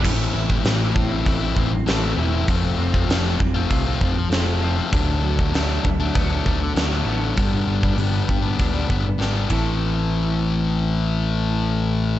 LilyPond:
<<
  \new Staff \with { instrumentName = "Clean electric guitar" } { \time 4/4 \key a \minor \tempo 4 = 98 a,8 e8 e8 c'8 e'8 c'8 a'8 e'8 | f8 c'8 f8 c'8 f'8 c'8 a'8 f'8 | d8 fis8 fis8 a8 b8 a8 a'8 b8 | g,8 d8 g8 b8 d'8 b8 g'8 <a, e c' e' a'>8~ |
<a, e c' e' a'>1 | }
  \new Staff \with { instrumentName = "Distorted electric guitar" } { \time 4/4 \key a \minor <a, e a c' e'>8. <a c' e'>16 <a, e a c' e'>8. <a c' e'>8 <a c' e'>16 <e a c' e'>8 <a, e a c' e'>8 <e a c' e'>16 <a c' e'>16 | <f a c' f'>8. <a c' f'>16 <f a c' f'>8. <a c' f'>8 <a c' f'>16 <f a c' f'>8 <f a c' f'>8 <f a c' f'>16 <a c' f'>16 | <d fis a d'>8. <fis a d'>16 <d fis a d'>8. <fis a d'>8 <fis a d'>16 <d fis a d'>8 <d fis a d'>8 <d fis a d'>16 <fis a d'>16 | <g, d g b d'>8. <g b d'>16 <g, d g b d'>8. <g b d'>8 <g b d'>16 <d g b d'>8 <g, d g b d'>8 <a, e a>8~ |
<a, e a>1 | }
  \new Staff \with { instrumentName = "Picked electric bass" } { \clef bass \time 4/4 \key a \minor a,,8 a,,8 a,,8 a,,8 a,,8 a,,8 a,,8 e,,8 | f,,8 f,,8 f,,8 f,,8 c,8 f,,8 f,,4 | d,8 d,8 d,8 d,8 d,8 d,8 d,8 a,,8 | g,,8 g,,8 g,,8 g,,8 d,8 g,,8 gis,,8 a,,8~ |
a,,1 | }
  \new DrumStaff \with { instrumentName = "Drums" } \drummode { \time 4/4 <cymc bd>8. bd16 <hho sn>8 bd8 <hho bd>8 bd8 <hho sn>4 | <hho bd>8. bd16 <hho sn>8 bd8 <hho bd>8 bd8 <hho sn>4 | <hho bd>8. bd16 <hho sn>8 bd8 <hho bd>8 bd8 <hho sn>4 | <hho bd>8. bd16 hho8 bd8 <hho bd>8 bd8 sn8 <bd cymr>8 |
r4 r4 r4 r4 | }
>>